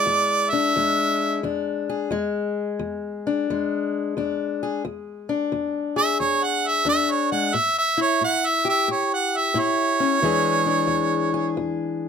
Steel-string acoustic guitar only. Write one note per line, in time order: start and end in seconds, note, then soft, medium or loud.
0.00 0.76 G#3 medium
0.00 0.52 E4 medium
0.06 0.71 E2 medium
0.53 1.43 D4 medium
0.76 1.40 E2 medium
0.76 2.11 G#3 medium
1.43 2.07 E2 medium
1.43 2.14 D4 medium
1.89 3.30 G#4 medium
2.11 2.75 E2 medium
2.11 3.48 G#3 medium
2.79 3.43 E2 medium
3.27 4.16 D4 medium
3.50 4.12 E2 medium
3.50 7.31 G#3 medium
4.17 4.80 E2 medium
4.17 4.82 D4 medium
4.63 4.82 G#4 medium
4.85 5.47 E2 medium
5.29 6.85 D4 medium
5.52 6.15 E2 medium
5.96 7.52 G#4 medium
6.20 6.83 E2 medium
6.85 7.49 E2 medium
6.85 7.51 D4 medium
7.32 7.55 G#3 medium
7.54 8.17 A2 medium
7.97 9.55 E4 medium
8.21 8.84 A2 medium
8.65 10.20 G4 medium
8.88 9.51 A2 medium
9.54 10.18 A2 medium
9.54 10.24 E4 medium
10.00 10.21 C#4 medium
10.22 10.86 E2 medium
10.22 12.09 E3 medium
10.22 12.09 G#3 medium
10.22 10.66 D4 medium
10.22 11.33 G#4 medium
10.66 12.09 D4 medium
10.87 11.52 E2 medium
11.34 12.09 G#4 medium
11.57 12.09 E2 medium